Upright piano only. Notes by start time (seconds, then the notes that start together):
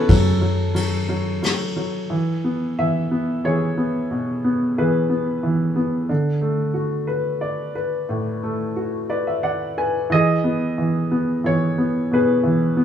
Already playing: E3 B3 C#4 E4 F#4 G#4 A4 B4 C#5
0.09 F#3
0.41 F#3
0.75 F#3
1.09 F#3
1.43 F#3
1.76 F#3
2.10 E3
2.44 B3
2.79 E3 E5
3.11 B3
3.44 E3 G#4 C#5
3.77 B3
4.11 B2
4.44 B3
4.78 E3 G#4 B4
5.10 B3
5.43 E3
5.76 B3
6.09 D3
6.41 A3
6.74 F#4
7.07 B4
7.41 D5
7.75 B4
8.09 A2
8.43 A3
8.76 F#4
9.10 B4 D5
9.27 E5
9.43 D5 F#5
9.78 B4 G#5
10.10 E3 D#5
10.14 G#4
10.44 B3
10.78 E3
11.11 B3
11.44 E3 C#5
11.78 B3
12.11 B2 G#4 B4
12.43 E3
12.77 B3